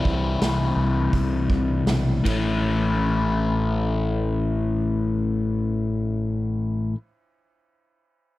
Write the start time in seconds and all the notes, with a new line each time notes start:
Already playing: C3 E3 G3 C4 E4
0.05 C2, kick
0.41 C2, snare, open hi-hat
0.76 C2
1.13 C2, kick, open hi-hat
1.50 C2, kick
1.86 B1, snare, open hi-hat
2.24 A1 A2 E3 A3 C#4 E4, kick, ride